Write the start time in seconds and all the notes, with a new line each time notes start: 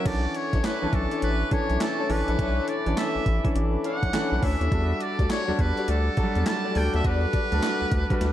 0.05 B1 E3 C#4 D4 A4 D5 E5 C#6 D6, kick, closed hi-hat, crash
0.34 C#5, closed hi-hat
0.53 A1 D4 E4 A4 C#5, kick, closed hi-hat
0.63 D4 E4 A4 B4 C#5, snare, clap, closed hi-hat
0.82 B1 E3 C#4 D4 A4
0.93 B1 A4, kick, closed hi-hat
1.11 D4 E4 A4 C#5, closed hi-hat
1.22 A1 B4, closed hi-hat
1.51 E3 C#4 D4 A4 C#5, kick, closed hi-hat
1.70 B1, closed hi-hat
1.81 A4, snare, clap, closed hi-hat
1.98 D4 E4 A4 C#5
2.09 A1 E3 C#4 D4 A4 B4, open hi-hat
2.27 A#1 D4 E4 A4 C#5, closed hi-hat
2.38 B1 D4 E4 A4 C#5 B5, kick, closed hi-hat
2.68 D5, closed hi-hat
2.86 A1 E3 C#4 D4 A4, closed hi-hat
2.97 E5, snare, clap, closed hi-hat
3.15 A1
3.26 A1, kick, closed hi-hat
3.44 E3 C#4 D4 A4, kick, closed hi-hat
3.56 A1, closed hi-hat
3.84 D4 E4 A4 C#5 F#5, closed hi-hat
4.03 B1, kick, closed hi-hat
4.13 E3 C#4 D4 A4, snare, clap, closed hi-hat
4.32 B1
4.42 D2 D4 E4 A4 C#5 E5, kick, open hi-hat
4.61 D#2, closed hi-hat
4.71 E2 G3 D4 F#4 A4 F#5 A5, kick, closed hi-hat
5.00 D5, closed hi-hat
5.18 D2 F#4 G4 A4 D5, kick, closed hi-hat
5.29 F#4 G4 A4 C#5 D5, snare, clap, closed hi-hat
5.48 E2 G3 D4 F#4 A4
5.59 E2 B4, kick, closed hi-hat
5.77 F#4 G4 A4 D5, closed hi-hat
5.88 D2 A4, closed hi-hat
6.17 F#3 D4 F#4 A4, kick, closed hi-hat
6.23 G3
6.35 E2, closed hi-hat
6.46 A5, snare, clap, closed hi-hat
6.64 F#4 G4 A4 D5
6.75 D2 G3 D4 F#4 A4 G5, open hi-hat
6.93 D#2 F#4 G4 A4 D5 E5, closed hi-hat
7.04 E2 F#4 G4 A4 B4 D5, kick, closed hi-hat
7.33 kick, closed hi-hat
7.51 D2 G3 D4 F#4 A4, closed hi-hat
7.63 snare, clap, closed hi-hat
7.82 D2
7.91 D2, kick, closed hi-hat
8.10 G3 D4 F#4 B4, kick, closed hi-hat
8.21 D2, snare, closed hi-hat